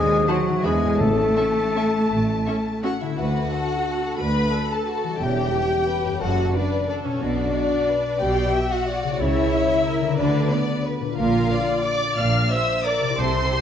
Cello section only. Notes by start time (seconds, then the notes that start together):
Already playing: G#3
0.29 F#3
0.65 G#3
1.01 A3
3.19 D2
4.20 D2
5.22 E2
6.22 F#2
7.23 B2
8.22 B2
9.21 C#3
10.19 D3
11.18 A#2
12.18 A#2
13.19 C3